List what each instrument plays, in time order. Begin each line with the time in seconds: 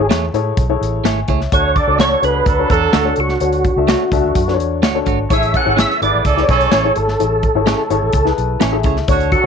0.00 upright piano E4 G#4 A4 C#5
0.09 fingered electric bass E2, clean electric guitar A3 E4 G#4 C#5, snare, closed hi-hat
0.34 fingered electric bass A2, upright piano E4 G#4 A4 C#5, closed hi-hat
0.57 fingered electric bass B1, kick, closed hi-hat
0.69 upright piano E4 G#4 A4 C#5
0.81 fingered electric bass A1, closed hi-hat
1.04 fingered electric bass G#1, clean electric guitar A3 E4 G#4 C#5, upright piano E5 G#5, snare, closed hi-hat
1.28 fingered electric bass C#2, clean electric guitar A3 E4 G#4 C#5, upright piano C#5 E5, kick, closed hi-hat
1.41 snare
1.52 fingered electric bass D2, horn section A3 F#4 C#5, upright piano D4 F#4 A4 C#5, tonewheel organ C#5, kick, closed hi-hat
1.76 horn section F#3 D4 A4, tonewheel organ D5, kick, closed hi-hat
1.87 fingered electric bass C#2, upright piano D4 F#4 A4 C#5
1.99 clean electric guitar A3 D4 F#4 C#5, tonewheel organ C#5, snare, closed hi-hat
2.22 fingered electric bass C#2, horn section B3 G#4 B4, upright piano D4 F#4 A4 C#5, tonewheel organ B4, closed hi-hat
2.46 fingered electric bass D2, horn section F#3 D4 A4, kick, closed hi-hat
2.59 upright piano D4 F#4 A4 C#5
2.70 fingered electric bass E2, horn section F#3 D4 A4, tonewheel organ A4, kick, closed hi-hat
2.93 fingered electric bass D2, clean electric guitar A3 D4 F#4 C#5, snare, closed hi-hat
3.05 upright piano D4 F#4 A4 C#5
3.16 fingered electric bass C#2, closed hi-hat
3.20 tonewheel organ F#4
3.29 snare
3.40 fingered electric bass D2, upright piano D4 F#4 A4 C#5, closed hi-hat
3.53 closed hi-hat
3.64 kick, closed hi-hat
3.77 fingered electric bass C#2, upright piano D4 F#4 A4 E5
3.87 clean electric guitar A3 D4 F#4 C#5, snare, closed hi-hat
4.12 fingered electric bass C#2, upright piano D4 F#4 A4 E5, kick, closed hi-hat
4.24 fingered electric bass D2
4.35 fingered electric bass F#2, kick, closed hi-hat
4.47 upright piano D4 F#4 A4 B4, snare
4.54 upright piano C#5
4.60 fingered electric bass E2, closed hi-hat
4.82 fingered electric bass D2, clean electric guitar A3 D4 F#4 C#5, snare, closed hi-hat
4.94 upright piano D4 F#4 A4 C#5
5.06 fingered electric bass G#1, clean electric guitar A3 D4 F#4 C#5, kick, closed hi-hat
5.30 fingered electric bass A1, horn section A3 G#4 C#5, upright piano E4 G#4 A4 C#5, tonewheel organ E5, kick, closed hi-hat
5.43 closed hi-hat
5.54 horn section E3 C#4 A4, tonewheel organ F#5, kick, closed hi-hat
5.65 fingered electric bass G#1, upright piano E4 G#4 A4 C#5
5.77 clean electric guitar C#4 E4 G#4 C#5, tonewheel organ E5, snare, closed hi-hat
5.90 snare
6.01 fingered electric bass G#1, horn section B3 G#4 B4, upright piano E4 G#4 A4 E5, tonewheel organ D5, closed hi-hat
6.14 fingered electric bass A1
6.25 fingered electric bass C#2, horn section E3 C#4 A4, kick, closed hi-hat
6.37 upright piano E4 G#4 A4 B4, snare
6.43 upright piano C#5
6.49 fingered electric bass B1, horn section E3 C#4 A4, tonewheel organ C#5, kick, closed hi-hat
6.61 closed hi-hat
6.71 fingered electric bass A1, clean electric guitar C#4 E4 G#4 C#5, snare, closed hi-hat
6.85 upright piano E4 G#4 A4 C#5
6.96 fingered electric bass G#1, tonewheel organ A4, closed hi-hat
7.08 snare
7.19 fingered electric bass A1, upright piano E4 G#4 A4 C#5, closed hi-hat
7.43 kick, closed hi-hat
7.55 fingered electric bass G#1, upright piano E4 G#4 A4 C#5
7.66 clean electric guitar C#4 E4 G#4 C#5, snare, closed hi-hat
7.90 fingered electric bass G#1, upright piano E4 G#4 A4 C#5 C#6, closed hi-hat
8.02 fingered electric bass A1
8.13 fingered electric bass C#2, upright piano A5, kick, closed hi-hat
8.25 upright piano E4 G#4 A4 B4, snare
8.37 fingered electric bass B1, upright piano A5, closed hi-hat
8.60 fingered electric bass A1, clean electric guitar C#4 E4 G#4 C#5, upright piano G#5, snare, closed hi-hat
8.72 upright piano E4 G#4 A4 E5
8.83 fingered electric bass C#2, clean electric guitar C#4 E4 G#4 C#5, upright piano E5, kick, closed hi-hat
8.96 snare
9.08 fingered electric bass D2, horn section A3 F#4 C#5, upright piano D4 F#4 A4 C#5, kick, closed hi-hat
9.20 closed hi-hat
9.31 horn section F#3 D4 A4, tonewheel organ F#4, kick, closed hi-hat